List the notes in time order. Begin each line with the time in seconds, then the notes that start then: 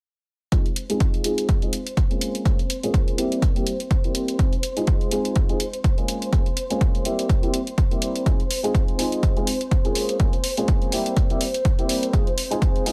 0.52 G#3 C4 D#4 F4 G#4 C5 C6, kick, closed hi-hat
0.66 closed hi-hat
0.76 closed hi-hat
0.89 G#3 C4 D#4 F4 G#4, closed hi-hat
1.00 kick, closed hi-hat
1.14 closed hi-hat
1.24 G#3 C4 D#4 F4 G#4, closed hi-hat
1.38 closed hi-hat
1.49 kick, closed hi-hat
1.62 G#3 C4 D#4 F4 G#4, closed hi-hat
1.73 closed hi-hat
1.87 closed hi-hat
1.97 kick, closed hi-hat
2.10 G#3 A#3 C#4 F4 G#4, closed hi-hat
2.21 closed hi-hat
2.35 closed hi-hat
2.45 G#3 C#4, kick, closed hi-hat
2.59 closed hi-hat
2.70 closed hi-hat
2.83 G#3 A#3 C#4 F4 G#4, closed hi-hat
2.94 kick, closed hi-hat
3.08 closed hi-hat
3.18 G3 A#3 C4 E4 G4, closed hi-hat
3.32 closed hi-hat
3.42 kick, closed hi-hat
3.55 G3 A#3 C4 E4 G4, closed hi-hat
3.67 closed hi-hat
3.80 closed hi-hat
3.91 kick, closed hi-hat
4.04 G3 A#3 C4 E4 G4, closed hi-hat
4.15 closed hi-hat
4.28 closed hi-hat
4.39 F4, kick, closed hi-hat
4.53 closed hi-hat
4.63 closed hi-hat
4.76 G#3 C4 D#4 F4 G#4, closed hi-hat
4.87 kick, closed hi-hat
5.01 closed hi-hat
5.11 G#3 C4 D#4 F4 G#4, closed hi-hat
5.25 closed hi-hat
5.36 kick, closed hi-hat
5.49 G#3 C4 D#4 F4 G#4, closed hi-hat
5.60 closed hi-hat
5.73 closed hi-hat
5.84 kick, closed hi-hat
5.97 G#3 A#3 C#4 F4 G#4, closed hi-hat
6.08 closed hi-hat
6.22 closed hi-hat
6.32 G#3 A#3 C#4 F4 G#4, kick, closed hi-hat
6.46 closed hi-hat
6.57 closed hi-hat
6.70 G#3 A#3 C#4 F4 G#4, closed hi-hat
6.81 kick, closed hi-hat
6.95 closed hi-hat
7.05 G3 A#3 C4 E4 G4, closed hi-hat
7.19 closed hi-hat
7.29 kick, closed hi-hat
7.43 G3 A#3 C4 E4 G4, closed hi-hat
7.54 closed hi-hat
7.67 closed hi-hat
7.78 kick, closed hi-hat
7.91 G3 A#3 C4 E4 G4, closed hi-hat
8.02 closed hi-hat
8.16 closed hi-hat
8.26 G#3 D#4 G#4 C5 C6, kick, closed hi-hat
8.40 closed hi-hat
8.51 open hi-hat
8.63 G#3 C4 D#4 F4 G#4, closed hi-hat
8.75 kick, closed hi-hat
8.88 closed hi-hat
8.98 G#3 C4 D#4 F4 G#4, open hi-hat
9.12 closed hi-hat
9.23 kick, closed hi-hat
9.36 G#3 C4 D#4 F4 G#4, closed hi-hat
9.47 open hi-hat
9.61 closed hi-hat
9.71 kick, closed hi-hat
9.84 G#3 A#3 C#4 F4 G#4, closed hi-hat
9.95 open hi-hat
10.09 closed hi-hat
10.20 G#3 A#3 C#4 F4 G#4, kick, closed hi-hat
10.33 closed hi-hat
10.44 open hi-hat
10.57 G#3 A#3 C#4 F4 G#4, closed hi-hat
10.68 kick, closed hi-hat
10.82 closed hi-hat
10.92 G3 A#3 C4 E4 G4, open hi-hat
11.06 closed hi-hat
11.17 kick, closed hi-hat
11.30 G3 A#3 C4 E4 G4, closed hi-hat
11.41 open hi-hat
11.54 closed hi-hat
11.65 kick, closed hi-hat
11.78 G3 A#3 C4 E4 G4, closed hi-hat
11.89 open hi-hat
12.03 closed hi-hat
12.13 G#3 C4 D#4 F4 G#4, kick, closed hi-hat
12.27 closed hi-hat
12.38 open hi-hat
12.50 G#3 C4 D#4 F4 G#4, closed hi-hat
12.62 kick, closed hi-hat
12.76 closed hi-hat
12.85 G#3 C4 D#4 F4 G#4, open hi-hat